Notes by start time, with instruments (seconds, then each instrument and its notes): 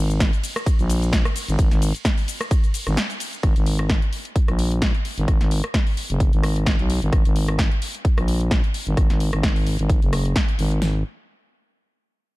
Already playing: fm bass G#1
0.10 closed hi-hat, shaker
0.20 kick, snare, closed hi-hat, ride, shaker
0.33 closed hi-hat, shaker
0.44 open hi-hat, ride, shaker
0.56 cross-stick, closed hi-hat, shaker
0.66 kick, closed hi-hat, ride, shaker
0.79 fm bass A#1, closed hi-hat, shaker
0.90 open hi-hat, ride, shaker
1.02 closed hi-hat, shaker
1.13 kick, snare, closed hi-hat, ride, shaker
1.25 cross-stick, closed hi-hat, shaker
1.36 open hi-hat, ride, shaker
1.48 fm bass G#1, closed hi-hat, shaker
1.59 kick, closed hi-hat, ride, shaker
1.71 fm bass G#1, snare, closed hi-hat, shaker
1.82 open hi-hat, ride, shaker
1.95 closed hi-hat, shaker
2.05 kick, snare, closed hi-hat, ride, shaker
2.18 open hi-hat, shaker
2.28 open hi-hat, ride, shaker
2.41 cross-stick, closed hi-hat, shaker
2.51 kick, closed hi-hat, ride, shaker
2.64 closed hi-hat, shaker
2.74 open hi-hat, ride, shaker
2.87 fm bass G#1, cross-stick, closed hi-hat, shaker
2.97 snare, closed hi-hat, ride, shaker
3.10 closed hi-hat, shaker
3.20 open hi-hat, ride, shaker
3.33 closed hi-hat, shaker
3.43 fm bass G#1, kick, cross-stick, closed hi-hat
3.56 fm bass G#1, closed hi-hat
3.66 open hi-hat
3.79 cross-stick, closed hi-hat
3.90 kick, snare, closed hi-hat
4.02 closed hi-hat
4.13 open hi-hat
4.25 closed hi-hat
4.36 kick, closed hi-hat
4.48 fm bass A#1, cross-stick, closed hi-hat
4.59 open hi-hat
4.71 closed hi-hat
4.82 kick, snare, closed hi-hat
4.95 closed hi-hat
5.05 open hi-hat
5.18 fm bass G#1, closed hi-hat
5.28 kick, cross-stick, closed hi-hat
5.41 fm bass G#1, snare, closed hi-hat
5.51 open hi-hat
5.64 cross-stick, closed hi-hat
5.74 kick, snare, closed hi-hat
5.87 open hi-hat
5.97 open hi-hat
6.10 fm bass F#1, closed hi-hat
6.20 kick, closed hi-hat
6.33 fm bass G#1, closed hi-hat
6.43 cross-stick, open hi-hat
6.56 closed hi-hat
6.66 kick, snare, closed hi-hat
6.79 fm bass B1, closed hi-hat
6.90 open hi-hat
7.02 fm bass G#1, closed hi-hat
7.12 fm bass G#1, kick, cross-stick, closed hi-hat
7.25 fm bass G#1, closed hi-hat
7.36 open hi-hat
7.48 cross-stick, closed hi-hat
7.59 kick, snare, closed hi-hat
7.72 closed hi-hat
7.82 open hi-hat
7.95 closed hi-hat
8.05 kick, closed hi-hat
8.18 fm bass A#1, cross-stick, closed hi-hat
8.28 open hi-hat
8.41 closed hi-hat
8.51 kick, snare, closed hi-hat
8.64 closed hi-hat
8.74 open hi-hat
8.87 fm bass G#1, closed hi-hat
8.97 kick, cross-stick, closed hi-hat
9.10 fm bass G#1, snare, closed hi-hat
9.20 open hi-hat
9.33 fm bass G#1, cross-stick, closed hi-hat
9.43 kick, snare, closed hi-hat
9.56 open hi-hat
9.67 open hi-hat
9.79 fm bass G#1, closed hi-hat
9.90 kick, closed hi-hat
10.02 fm bass F#1, closed hi-hat
10.13 cross-stick, open hi-hat
10.25 closed hi-hat
10.36 kick, snare, closed hi-hat
10.48 closed hi-hat
10.59 fm bass G#1, open hi-hat
10.71 closed hi-hat
10.82 fm bass G#1, snare